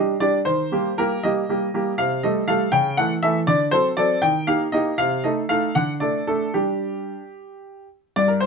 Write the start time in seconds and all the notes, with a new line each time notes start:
Already playing: G3 D4 G4 D#5
0.20 G3 D4 G4 D5
0.45 D#3 C5
0.72 G3 A#3 G4
0.98 G3 A#3 G4 A#4
1.23 G3 A#3 G4 D#5
1.49 G3 A#3 G4
1.74 G3 A#3 G4
1.98 C3 F5
2.23 G3 A3 A4 D#5
2.48 G3 A3 A4 F5
2.72 C#3 G5
2.97 E3 A3 A4 F#5
3.23 E3 A3 A4 E5
3.47 D3 D5
3.71 F#3 C4 A4 C5
3.97 F#3 C4 A4 D5
4.22 D#3 G5
4.47 A#3 D#4 G4 F5
4.72 A#3 D#4 G4 D#5
4.98 C3 F5
5.24 A3 D#4 A4 D#5
5.49 A3 D#4 A4 F5
5.75 D3 F#5
6.00 A3 D4 A4 D5
6.27 A3 D4 A4
6.54 G3 D4 G4
8.16 G2 D5
8.28 A#4
8.40 C5